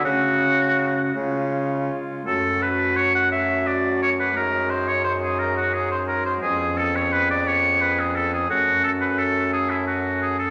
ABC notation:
X:1
M:6/8
L:1/16
Q:3/8=58
K:F#m
V:1 name="Oboe"
F6 z6 | A2 B2 c f e2 d2 c B | ^A2 ^B c B G A F G B A B | G2 A c B d c2 B G A G |
F2 A B A2 G E F2 G A |]
V:2 name="Pipe organ"
[A,CF]6 [G,C^E]6 | [A,CF]12 | [G,^DG]12 | [B,CG]12 |
[A,CA]12 |]
V:3 name="Pipe organ" clef=bass
C,6 C,4 z2 | F,,12- | F,,12 | ^E,,12 |
F,,12 |]
V:4 name="Bassoon" clef=bass
C,6 C,4 z2 | F,,12- | F,,12 | ^E,,12 |
F,,12 |]